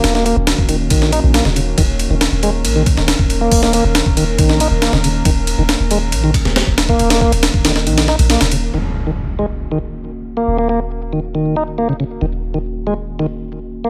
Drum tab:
RD |x-x-x-x-x-x-x-x-|x-x-x-x-x-x-x-x-|--x-x-x-x-x-x-x-|x-x-x-x-x-x-x-x-|
HH |----------------|----------------|o---------------|----------------|
SD |oo--o----o--oo--|----o------oo---|-o--o----o--oo--|----o------oo-o-|
BD |-----o--o-------|o---------o--o--|o----o--o-------|o---------o--o-o|

RD |xx-xx-x-xx-xxxx-|----------------|----------------|----------------|
HH |----------------|----------------|----------------|----------------|
SD |-o--o-oo-oo-oo--|----------------|----------------|----------------|
BD |--o--o----------|----------------|----------------|----------------|